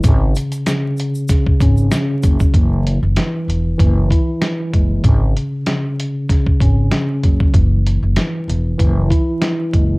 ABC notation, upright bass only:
X:1
M:4/4
L:1/16
Q:"Swing 16ths" 1/4=96
K:G#phr
V:1 name="Upright bass" clef=bass
G,,,2 z8 G,,,2 z2 F,,, z | F,,,3 F,,, z2 E,,,2 F,,,2 z4 F,,,2 | G,,,2 z8 G,,,2 z2 F,,, z | F,,,3 F,,, z2 E,,,2 F,,,2 z4 F,,,2 |]